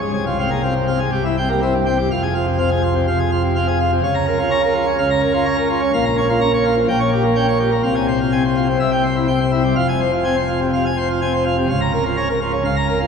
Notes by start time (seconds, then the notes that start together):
Already playing: C#1 C#2
0.01 G#4
0.13 C1 C2 G#4
0.26 F4
0.39 C4 F5
0.51 A#3 G#4
0.63 C4 F4
0.75 C3
0.88 C4 F5
0.99 G#4
1.12 C1 C2 G4
1.25 E4
1.38 C4 G5
1.49 A#3 G4
1.62 C4 E4
1.74 G2
1.86 C4 G5
1.98 G4
2.11 F1 F2 F5
2.23 G#4
2.35 F4
2.47 C3
2.58 C4 F5
2.71 G#4
2.83 F4
2.95 C3
3.08 C3 F5
3.20 G#4
3.32 F4
3.44 C3
3.56 C4 F5
3.68 G#4
3.80 F4
3.92 C3
4.04 C#2 C#3 F5
4.15 A#5
4.27 A#4
4.39 F4
4.51 C#4 A#5
4.63 A#4
4.75 F4
4.86 C#4
4.98 C#2 C#3 F5
5.10 A#5
5.22 A#4
5.34 F4
5.46 C#4 A#5
5.58 A#4
5.70 F4
5.82 C#4
5.93 A#1 A#2 F5
6.05 A#5
6.18 C#5
6.29 F4
6.41 C#4 A#5
6.54 C#5
6.65 F4
6.77 F3
6.89 A#1 A#2 G5
7.00 C#5
7.13 G4
7.24 A#3
7.36 C#4 G5
7.48 C#5
7.60 G4
7.72 A#3
7.83 C2 C3 F5
7.95 G#5
8.08 C5
8.21 F4
8.32 C4 G#5
8.45 C5
8.56 F4
8.68 C4
8.79 C2 C3 E5
8.92 G5
9.03 C5
9.16 E4
9.28 C4 G5
9.40 C5
9.52 E4
9.63 G3
9.76 F1 F2 F5
9.89 G#5
10.00 C5
10.12 F4
10.24 C4 G#5
10.36 C5
10.48 F4
10.61 C3
10.73 C3 F5
10.86 G#5
10.97 C5
11.10 F4
11.22 C4 G#5
11.34 C5
11.45 F4
11.58 C3
11.69 C#1 C#2 F5
11.81 A#5
11.93 A#4
12.05 F4
12.17 C#4 A#5
12.29 A#4
12.41 F4
12.53 C#3
12.65 C#1 C#2 F5
12.76 A#5
12.88 A#4
13.00 F4